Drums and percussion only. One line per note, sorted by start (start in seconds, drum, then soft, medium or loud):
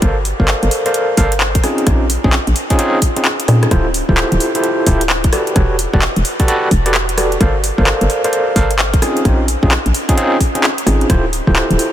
0.02 kick loud
0.02 cross-stick soft
0.02 closed hi-hat medium
0.25 open hi-hat loud
0.40 kick medium
0.48 clap loud
0.63 closed hi-hat soft
0.71 open hi-hat medium
0.86 closed hi-hat medium
0.94 closed hi-hat medium
1.17 kick loud
1.17 open hi-hat loud
1.32 closed hi-hat medium
1.40 clap loud
1.55 kick loud
1.55 closed hi-hat medium
1.64 cross-stick medium
1.64 open hi-hat medium
1.78 closed hi-hat soft
1.87 kick loud
1.87 cross-stick medium
1.87 closed hi-hat medium
2.10 open hi-hat loud
2.24 kick medium
2.33 clap loud
2.47 closed hi-hat soft
2.56 open hi-hat loud
2.70 kick loud
2.70 closed hi-hat medium
2.79 closed hi-hat medium
3.02 kick medium
3.02 open hi-hat loud
3.16 closed hi-hat medium
3.25 clap loud
3.40 closed hi-hat medium
3.48 cross-stick medium
3.48 open hi-hat medium
3.63 cross-stick medium
3.63 closed hi-hat soft
3.71 kick loud
3.71 cross-stick medium
3.71 closed hi-hat medium
3.94 open hi-hat loud
4.09 kick medium
4.17 clap loud
4.32 closed hi-hat soft
4.40 open hi-hat medium
4.55 closed hi-hat medium
4.64 closed hi-hat medium
4.87 kick loud
4.87 open hi-hat loud
5.01 closed hi-hat medium
5.10 clap loud
5.24 kick loud
5.24 closed hi-hat medium
5.33 cross-stick medium
5.33 open hi-hat loud
5.47 closed hi-hat soft
5.56 kick loud
5.56 cross-stick medium
5.56 closed hi-hat medium
5.79 open hi-hat loud
5.94 kick loud
6.02 clap loud
6.16 closed hi-hat soft
6.25 open hi-hat medium
6.40 kick loud
6.40 closed hi-hat medium
6.48 closed hi-hat medium
6.71 kick medium
6.71 open hi-hat loud
6.86 closed hi-hat medium
6.94 clap loud
7.09 closed hi-hat soft
7.18 cross-stick medium
7.18 open hi-hat medium
7.32 closed hi-hat soft
7.41 kick loud
7.41 cross-stick medium
7.41 closed hi-hat medium
7.64 open hi-hat loud
7.78 kick medium
7.87 clap loud
8.01 closed hi-hat soft
8.10 open hi-hat medium
8.24 closed hi-hat medium
8.33 closed hi-hat medium
8.56 kick loud
8.56 open hi-hat loud
8.71 closed hi-hat medium
8.79 clap loud
8.94 kick loud
8.94 closed hi-hat medium
9.02 cross-stick medium
9.02 open hi-hat medium
9.17 closed hi-hat soft
9.25 kick loud
9.25 cross-stick medium
9.25 closed hi-hat medium
9.48 open hi-hat loud
9.63 kick loud
9.71 clap loud
9.86 closed hi-hat soft
9.94 open hi-hat medium
10.09 kick loud
10.09 closed hi-hat medium
10.18 closed hi-hat medium
10.40 kick medium
10.40 open hi-hat loud
10.55 closed hi-hat medium
10.64 clap loud
10.78 closed hi-hat medium
10.87 cross-stick medium
10.87 open hi-hat medium
11.01 closed hi-hat soft
11.10 kick loud
11.10 cross-stick medium
11.10 closed hi-hat medium
11.33 open hi-hat loud
11.47 kick medium
11.56 clap loud
11.71 closed hi-hat soft
11.79 open hi-hat medium